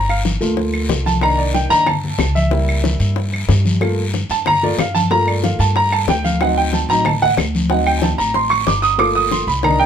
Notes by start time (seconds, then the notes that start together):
Already playing: G1
0.09 F5, high conga, claves
0.25 high bongo, high conga, short guiro
0.41 D2 A3 A#3 F4, high bongo, short guiro
0.57 high bongo, high conga, long guiro
0.73 high bongo, high conga, claves
0.89 C2, high bongo, low bongo, high conga, short guiro
1.06 A5, high bongo, high conga, short guiro
1.21 D#3 A#3 D4 A#5, high bongo, long guiro, claves
1.38 D5, high conga
1.54 G5, high bongo, high conga, short guiro
1.70 G2 D#3 A#3 D4 A#5, high conga, short guiro
1.86 A5, high bongo, high conga, low conga, long guiro, claves
2.04 high conga, low conga
2.18 C#2, high bongo, low bongo, high conga, short guiro, claves
2.35 E5, high conga, short guiro
2.51 G3 A#3 E4, high bongo, high conga, long guiro
2.69 high conga, claves
2.84 high bongo, high conga, short guiro
3.00 G2, high bongo, high conga, short guiro
3.16 high bongo, high conga, long guiro
3.32 high bongo, high conga, claves
3.48 G2, high bongo, low bongo, high conga, short guiro
3.65 high bongo, high conga, short guiro
3.81 A3 A#3 F4, high bongo, high conga, long guiro, claves
3.98 high conga
4.13 high bongo, high conga, short guiro
4.30 G2 A5, high conga, short guiro
4.46 A#5, high bongo, high conga, low conga, long guiro, claves
4.63 A3 A#3 F4 D5, high conga, low conga
4.78 G2 F5, high bongo, low bongo, high conga, short guiro, claves
4.95 A5, high conga, short guiro
5.10 A3 A#3 F4 A#5, high bongo, high conga, long guiro
5.27 D5, high conga, claves
5.44 F5, high bongo, high conga, short guiro
5.59 G2 A5, high bongo, high conga, short guiro
5.76 A#5, high bongo, high conga, long guiro
5.92 A5, high bongo, high conga, claves
6.07 D2 G5, high bongo, low bongo, high conga, short guiro
6.24 F5, high bongo, high conga, short guiro
6.41 F#3 C4 D#4 F#5, high bongo, long guiro, claves
6.57 G5, high conga
6.73 A5, high bongo, high conga, short guiro
6.89 A1 F#3 C4 D#4 A#5, high conga, short guiro
7.05 A5, high bongo, high conga, low conga, long guiro, claves
7.22 F#5, high conga, low conga
7.37 D2, high bongo, low bongo, high conga, short guiro, claves
7.55 high conga, short guiro
7.70 F#3 C4 D#4 F#5, high bongo, high conga, long guiro
7.86 G5, high conga, claves
7.98 G#5, high bongo
8.03 A5, high conga, short guiro
8.18 A1 A#5, high bongo, high conga, short guiro
8.34 C6, high bongo, high conga, long guiro
8.50 C#6, high bongo, high conga, claves
8.67 G1 D6, high bongo, low bongo, high conga, short guiro
8.82 D#6, high bongo, short guiro
8.98 A3 A#3 F4 D6, high bongo, high conga, long guiro, claves
9.15 D#6, high conga
9.31 C6, high bongo, high conga, short guiro
9.47 C2 B5, high conga, short guiro
9.63 A#3 D4 D#4 A#5, high bongo, high conga, low conga, long guiro, claves
9.79 G5, high conga, low conga